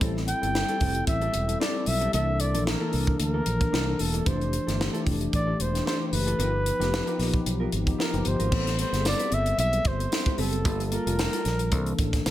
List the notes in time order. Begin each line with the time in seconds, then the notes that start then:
0.00 A1 G3 C4 E4 G4 A4, kick, closed hi-hat
0.15 muted clean electric guitar stroke, snare
0.28 G5, muted clean electric guitar stroke, closed hi-hat
0.41 G1 G3 C4 E4 G4 A4, closed hi-hat
0.55 muted clean electric guitar stroke, snare
0.68 G3 C4 E4 G4 A4, closed hi-hat
0.80 F1 C4 G4 A4, kick, open hi-hat
0.94 G3 C4 E4 A4, muted clean electric guitar stroke, closed hi-hat
1.07 A1 E5, muted clean electric guitar stroke, kick, closed hi-hat
1.21 C4 G4 A4, closed hi-hat
1.34 E1, muted clean electric guitar stroke, closed hi-hat
1.47 G3 C4 E4 A4, muted clean electric guitar stroke, closed hi-hat
1.60 C4 G4 A4 D5, snare
1.74 G3 C4 E4 A4, muted clean electric guitar stroke
1.86 B1 E5, muted clean electric guitar stroke, open hi-hat
2.01 C4 G4 A4, closed hi-hat
2.12 C2 E3 A#3 D4 E4 A4 E5, closed hi-hat
2.28 muted clean electric guitar stroke
2.40 D5, muted clean electric guitar stroke, closed hi-hat
2.54 A#1 E3 A#3 D4 E4 A4, closed hi-hat
2.66 A#4, muted clean electric guitar stroke, snare
2.81 E3 A#3 D4 E4 A4
2.93 C2 A#3 E4 A4, open hi-hat
3.07 E3 A#3 D4 A4, muted clean electric guitar stroke, kick
3.20 D2 A#4, muted clean electric guitar stroke, closed hi-hat
3.34 A#3 E4 A4
3.46 A#1, muted clean electric guitar stroke, closed hi-hat
3.61 E3 A#3 D4 A#4, muted clean electric guitar stroke, kick, closed hi-hat
3.73 C2 A#3 E4 A4, snare
3.87 E3 A#3 D4 A4, muted clean electric guitar stroke
3.99 E1 A4, muted clean electric guitar stroke, open hi-hat
4.14 A#3 E4 A4, closed hi-hat
4.26 F1 E3 A3 D4 E4 G4 A4 C5, kick, closed hi-hat
4.40 muted clean electric guitar stroke, closed hi-hat
4.53 muted clean electric guitar stroke, closed hi-hat
4.67 G1 E3 A3 D4 E4 G4 A4, snare, closed hi-hat
4.80 muted clean electric guitar stroke, snare
4.93 E3 A3 D4 E4 G4 A4, closed hi-hat
5.06 F1 D4 E4 A4, kick, open hi-hat
5.19 E3 A3 D4 G4, muted clean electric guitar stroke, closed hi-hat
5.33 A1 D5, muted clean electric guitar stroke, kick, closed hi-hat
5.47 D4 E4 A4
5.59 E1 C5, muted clean electric guitar stroke, closed hi-hat
5.73 E3 A3 D4 G4, muted clean electric guitar stroke, snare, closed hi-hat
5.86 D4 E4 A4 C5, snare
5.99 E3 A3 D4 G4, muted clean electric guitar stroke
6.07 C5
6.12 F#1 B4, muted clean electric guitar stroke, open hi-hat
6.26 D4 E4 A4, closed hi-hat
6.38 G1 F3 B3 D#4 F4 G4 A#4, closed hi-hat
6.53 muted clean electric guitar stroke
6.65 muted clean electric guitar stroke, closed hi-hat
6.79 F1 F3 B3 D#4 F4 G4 A#4, snare, closed hi-hat
6.92 muted clean electric guitar stroke, snare
7.06 F3 B3 D#4 F4 G4 A#4, closed hi-hat
7.19 A#1 B3 F4 A#4, snare, open hi-hat
7.33 F3 B3 D#4 G4, muted clean electric guitar stroke, kick, closed hi-hat
7.46 B1, muted clean electric guitar stroke, closed hi-hat
7.60 B3 F4 A#4
7.72 G#1, closed hi-hat
7.86 F3 B3 D#4 G4, muted clean electric guitar stroke, kick, closed hi-hat
7.98 B3 F4 A#4, snare
8.13 F#1 F3 B3 D#4 G4, muted clean electric guitar stroke, closed hi-hat
8.25 G1 C5, muted clean electric guitar stroke, closed hi-hat
8.39 G#1 B3 F4 A#4, closed hi-hat
8.51 A1 G3 B3 C4 G4 A4 B4, kick, crash
8.67 snare, closed hi-hat
8.78 C4 G4 B4 C5, closed hi-hat
8.92 G1 G3 B3 C4 G4 G#4 B4, snare, closed hi-hat
9.00 A4
9.05 D5, muted clean electric guitar stroke, snare, tambourine
9.19 C4 G4 B4, closed hi-hat
9.31 G1 E5, muted clean electric guitar stroke, closed hi-hat
9.46 muted clean electric guitar stroke, closed hi-hat
9.58 B1 E5, muted clean electric guitar stroke, closed hi-hat
9.73 muted clean electric guitar stroke, closed hi-hat
9.85 G1 C5, kick, closed hi-hat
9.99 muted clean electric guitar stroke, closed hi-hat
10.11 muted clean electric guitar stroke, snare, tambourine
10.26 C4 G4 B4, kick, closed hi-hat
10.38 F#1 G3 B3 C4 G4 A4 B4, open hi-hat
10.53 muted clean electric guitar stroke, closed hi-hat
10.64 G1 G3 A#3 F4 A4, kick, closed hi-hat
10.80 closed hi-hat
10.86 A4
10.91 A#3 F4 A4 A#4, closed hi-hat
11.06 F1 G3 A#3 F4 A4 A5, closed hi-hat
11.19 snare, tambourine
11.33 A#3 F4 A4, closed hi-hat
11.45 A#1, snare, closed hi-hat
11.59 muted clean electric guitar stroke, closed hi-hat
11.71 C2 E3 A#3 D4 A4, muted clean electric guitar stroke, kick, closed hi-hat
11.86 muted clean electric guitar stroke, closed hi-hat
11.98 A1, kick, closed hi-hat
12.13 muted clean electric guitar stroke, kick, snare, closed hi-hat
12.26 C2, muted clean electric guitar stroke, snare, tambourine